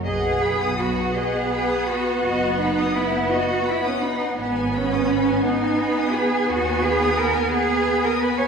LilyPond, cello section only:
\new Staff \with { instrumentName = "Cello section" } { \time 12/8 \key b \major \tempo 4. = 56 gis'4 fis'8 gis'4 fis'8 fis'8 dis'8 e'8 fis'8 e'16 cis'16 dis'8 | b8 cis'4 dis'4 gis'8 fis'8 gis'8 ais'8 gis'8. ais'16 b'16 cis''16 | }